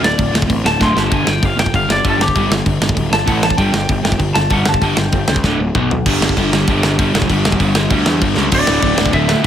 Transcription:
0.02 picked electric bass D1, overdriven electric guitar D2 A2, lead electric guitar D5, snare
0.18 picked electric bass D1, overdriven electric guitar D2 A2, kick, crash
0.33 picked electric bass D1, overdriven electric guitar D2 A2, snare
0.42 kick
0.49 picked electric bass A1, overdriven electric guitar D2 A2, kick, crash
0.64 picked electric bass D1, overdriven electric guitar D2 A2, lead electric guitar A5, snare
0.79 picked electric bass D1, overdriven electric guitar D2 A2 D3, lead electric guitar C6, kick, snare
0.94 picked electric bass G1, overdriven electric guitar G2 D3 G3, snare
0.98 lead electric guitar A5
1.09 picked electric bass G1, overdriven electric guitar G2 D3 G3, kick, crash
1.13 lead electric guitar G#5
1.25 picked electric bass G1, overdriven electric guitar G2 D3, lead electric guitar G5, snare
1.41 picked electric bass G1, overdriven electric guitar G2 D3, kick, crash
1.45 lead electric guitar F5
1.57 picked electric bass G1, overdriven electric guitar G2 D3, lead electric guitar G5, snare
1.66 kick
1.73 picked electric bass G1, overdriven electric guitar G2 D3, lead electric guitar F5, kick, crash
1.88 picked electric bass G1, overdriven electric guitar G2 D3, snare
1.92 lead electric guitar D5
2.04 picked electric bass G1, overdriven electric guitar G2 D3 G3, kick, crash
2.09 lead electric guitar A4
2.18 picked electric bass G1, overdriven electric guitar G2 D3, snare
2.22 lead electric guitar G4
2.28 kick
2.35 picked electric bass G1, overdriven electric guitar G2 D3 G3, kick, crash
2.49 picked electric bass G1, overdriven electric guitar G2 D3, snare
2.66 picked electric bass G1, overdriven electric guitar G2 D3, kick, crash
2.81 picked electric bass G1, overdriven electric guitar G2 D3, snare
2.89 kick
2.95 picked electric bass D1, overdriven electric guitar G2 D3, kick, crash
3.10 picked electric bass G1, overdriven electric guitar G2 D3, lead electric guitar A5, snare
3.26 picked electric bass A1, overdriven electric guitar A2 E3 A3, lead electric guitar F#5, kick, crash
3.42 overdriven electric guitar A2 E3, lead electric guitar A5, snare
3.50 kick
3.57 picked electric bass G1, overdriven electric guitar G2 D3 G3, lead electric guitar G5, kick, crash
3.72 picked electric bass G1, overdriven electric guitar G2 D3, snare
3.89 picked electric bass G1, overdriven electric guitar G2 D3, kick, crash
4.03 picked electric bass G1, overdriven electric guitar G2 D3, snare
4.12 kick
4.18 picked electric bass G1, overdriven electric guitar G2 D3, kick, crash
4.34 picked electric bass G1, overdriven electric guitar G2 D3, lead electric guitar A5, snare
4.50 picked electric bass G1, overdriven electric guitar G2 D3 G3, lead electric guitar F#5, kick, crash
4.66 picked electric bass G1, overdriven electric guitar G2 D3, lead electric guitar A5, snare
4.74 kick
4.81 picked electric bass G1, overdriven electric guitar G2 D3 G3, lead electric guitar G5, kick, crash
4.97 picked electric bass G1, overdriven electric guitar G2 D3, snare
5.12 picked electric bass G1, overdriven electric guitar G2 D3, kick, crash
5.28 picked electric bass C#2, overdriven electric guitar G2 D3, snare
5.36 kick
5.44 picked electric bass D1, overdriven electric guitar D2 A2 D3, kick, snare
5.58 picked electric bass D1, overdriven electric guitar D2 A2
5.75 picked electric bass B1, overdriven electric guitar B2 F#3 B3, kick, mid tom
5.91 overdriven electric guitar B2 F#3, floor tom
6.06 picked electric bass G1, overdriven electric guitar G2 D3 G3, kick, crash
6.21 picked electric bass G1, snare
6.29 kick
6.37 picked electric bass G1, overdriven electric guitar G2 D3 G3, kick, crash
6.53 overdriven electric guitar G2 D3 G3, snare
6.68 picked electric bass G1, overdriven electric guitar G2 D3 G3, kick, crash
6.83 picked electric bass G1, snare
6.99 picked electric bass G1, overdriven electric guitar G2 D3 G3, kick, crash
7.14 picked electric bass E1, overdriven electric guitar G2 D3 G3, snare
7.22 kick
7.30 picked electric bass G1, overdriven electric guitar G2 D3 G3, kick, crash
7.45 picked electric bass E1, snare
7.52 kick
7.60 picked electric bass G1, overdriven electric guitar G2 D3 G3, kick, crash
7.75 overdriven electric guitar G2 D3 G3, snare
7.90 picked electric bass D2, overdriven electric guitar G2 D3 G3, kick, crash
8.06 picked electric bass E2, snare
8.21 picked electric bass G1, overdriven electric guitar G2 D3 G3, kick, crash
8.35 picked electric bass C#2, overdriven electric guitar G2 D3 G3, snare
8.52 picked electric bass D1, overdriven electric guitar D2 A2 D3, lead electric guitar D5, kick, crash
8.67 picked electric bass D1, overdriven electric guitar D2 A2 D3, snare
8.82 picked electric bass D1, overdriven electric guitar D2 A2 D3, kick, crash
8.97 picked electric bass D1, overdriven electric guitar D2 A2 D3, snare
9.06 kick
9.13 picked electric bass D1, overdriven electric guitar D2 A2 D3, lead electric guitar E5, kick, crash
9.29 overdriven electric guitar D2 A2 D3, snare
9.43 overdriven electric guitar D2

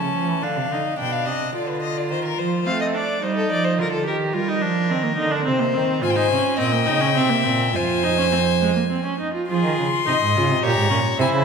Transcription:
Already playing: viola C#4, violin A5
0.01 cello C#3
0.14 cello F3
0.28 cello E3
0.42 cello D3, viola D4, violin F5
0.57 cello C3
0.71 cello D3, viola D#4
0.98 cello B2, viola D4, violin G5
1.12 violin F5
1.26 cello C3, violin D#5
1.55 cello D3, viola F4, violin D5
1.68 violin B4
1.82 violin D#5
1.98 violin D5
2.10 cello D#3, violin C5
2.25 violin A#4
2.39 cello F3, violin C5
2.66 cello A3, viola C4, violin F5
2.81 violin D#5
2.95 viola D4, violin D5
3.22 cello G3, viola D#4, violin C5
3.37 violin A4
3.50 cello F3, violin D5
3.64 violin C5
3.78 cello D3, viola F4, violin A#4
3.93 violin A4
4.06 cello D#3, viola G4, violin A#4
4.33 cello G3, viola F4, violin A#4
4.48 viola D#4
4.62 cello F3, viola D4
4.90 cello D#3, viola C4
5.03 viola A#3
5.16 cello D3, viola D#4
5.31 viola D4
5.45 cello C3, viola C4, violin C5
5.59 viola A#3
5.74 cello D#3, viola C4
6.01 cello G#2, viola F4, violin C5 G#5
6.10 violin G5
6.16 viola D#4, violin G#5
6.31 cello C3, viola C#4
6.58 cello A#2, viola C4, violin D#5 G5
6.72 viola A#3
6.86 cello C#3, viola D#4
7.01 viola C#4
7.15 cello C3, viola C4, violin E5
7.29 viola A#3
7.44 cello A#2, viola C4
7.73 cello F2, viola F4, violin C5 G#5
8.03 viola D#4
8.18 viola C#4
8.32 viola C4
8.61 viola G#3
8.75 viola A#3
8.91 viola C4
9.05 viola C#4
9.20 viola D#4
9.34 viola F4
9.49 cello F3, viola F4, violin G#4 C6
9.65 cello D#3
9.79 cello C#3
10.06 cello C3, viola D#4, violin D#5
10.22 cello G#2
10.35 cello C#3, viola F4
10.51 cello C3
10.62 cello A#2, viola G4, violin C#5 A#5
10.78 cello G#2
10.90 cello A#2, viola C#4
11.18 cello C3, viola E4, violin C5 G#5
11.33 cello C#3

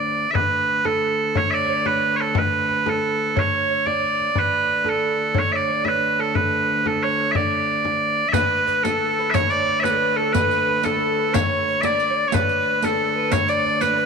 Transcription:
Already playing: viola da gamba D2, harp G4 A4 B4 D5, bagpipes D5
0.31 harp B4, bagpipes E5
0.35 viola da gamba D2, bagpipes B4, frame drum
0.69 frame drum
0.85 harp A4, bagpipes A4, frame drum
1.35 harp C#5, bagpipes C#5, frame drum
1.50 harp D5, bagpipes D5 E5
1.68 harp C#5, frame drum
1.86 bagpipes B4, harp B4, frame drum
2.16 bagpipes C#5
2.20 bagpipes A4
2.35 harp B4, bagpipes B4, frame drum
2.69 harp B4, frame drum
2.86 harp A4, bagpipes A4, frame drum
3.36 harp C#5, bagpipes C#5, frame drum
3.70 harp C#5
3.86 bagpipes D5, harp D5, frame drum
4.03 frame drum
4.20 frame drum
4.35 viola da gamba D2, harp B4, bagpipes B4, frame drum
4.68 frame drum
4.84 harp A4, frame drum
4.89 bagpipes A4
5.34 harp C#5, frame drum
5.39 bagpipes C#5
5.51 harp D5, bagpipes E5
5.55 bagpipes D5
5.69 harp C#5, frame drum
5.85 harp B4, bagpipes B4 E5, frame drum
6.19 harp A4, bagpipes A4
6.35 harp B4, bagpipes B4, frame drum
6.68 harp B4
6.86 harp A4, bagpipes A4, frame drum
7.03 bagpipes C#5, harp C#5
7.31 bagpipes E5, frame drum
7.36 harp D5, bagpipes D5
7.85 frame drum
8.28 viola da gamba D2, bagpipes E5
8.33 bagpipes B4, recorder B4, harp B4, riq, frame drum
8.67 recorder B4, frame drum
8.83 recorder A4, bagpipes A4, harp A4, riq, frame drum
9.19 harp B4
9.30 harp C#5, bagpipes C#5 E5, riq
9.35 recorder C#5, frame drum
9.50 bagpipes D5, recorder D5, harp D5, riq
9.68 frame drum
9.80 recorder B4, bagpipes B4 E5, harp C#5
9.84 harp B4, riq, frame drum
9.90 recorder A4
9.97 recorder B4
10.01 harp B4
10.16 recorder A4, bagpipes A4, harp A4
10.32 recorder B4, bagpipes B4, harp B4, riq, frame drum
10.51 riq
10.69 harp B4, frame drum
10.83 recorder A4, bagpipes A4, harp A4, riq, frame drum
11.18 harp B4
11.33 recorder C#5, harp C#5, bagpipes C#5, riq, frame drum
11.67 recorder C#5
11.81 recorder D5, harp D5, bagpipes D5 E5, riq, frame drum
12.00 riq
12.10 harp C#5
12.28 bagpipes C#5
12.32 viola da gamba D2, harp B4, recorder B4, bagpipes B4, riq, frame drum
12.49 riq
12.67 frame drum
12.82 harp A4, recorder A4, bagpipes A4, riq, frame drum
13.15 recorder B4, harp B4
13.31 recorder C#5, bagpipes C#5, harp C#5, riq, frame drum
13.48 recorder D5, harp D5, bagpipes D5, riq
13.66 frame drum
13.76 recorder C#5
13.81 recorder B4, harp B4, bagpipes B4, riq, frame drum
13.97 harp B4, recorder B4

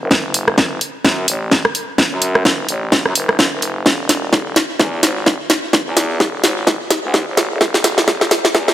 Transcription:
0.01 fm bass F#1
0.11 fm bass F#1, kick, snare
0.34 open hi-hat
0.48 cross-stick
0.58 fm bass F#1, kick, snare
0.81 open hi-hat
1.05 fm bass F#2, kick, snare
1.28 fm bass A1, open hi-hat
1.51 kick, snare
1.65 cross-stick
1.75 open hi-hat
1.98 kick, snare
2.12 fm bass F#2
2.22 open hi-hat
2.35 cross-stick
2.45 fm bass F#1, kick, snare
2.69 fm bass A1, open hi-hat
2.92 kick, snare
3.06 fm bass F#2, cross-stick
3.15 fm bass F#1, open hi-hat
3.29 cross-stick
3.39 fm bass F#1, kick, snare
3.52 fm bass F#1
3.62 open hi-hat
3.86 fm bass E1, kick, snare
4.09 snare, open hi-hat
4.33 fm bass E1, kick, snare
4.56 snare, open hi-hat
4.80 fm bass E2, kick, snare
5.03 fm bass G#1, snare, open hi-hat
5.26 kick, snare
5.50 snare, open hi-hat
5.73 kick, snare
5.87 fm bass E2
5.97 snare, open hi-hat
6.20 fm bass E1, kick, snare
6.44 fm bass G#1, snare, open hi-hat
6.67 kick, snare
6.90 snare, open hi-hat
7.04 fm bass D2
7.14 kick, snare
7.28 fm bass G#1
7.37 snare, open hi-hat
7.51 fm bass E1
7.61 fm bass E1, kick, snare
7.74 snare
7.84 snare, open hi-hat
7.98 snare
8.08 fm bass E1, kick, snare
8.21 snare
8.31 snare, open hi-hat
8.45 snare
8.55 fm bass E2, kick, snare
8.68 snare

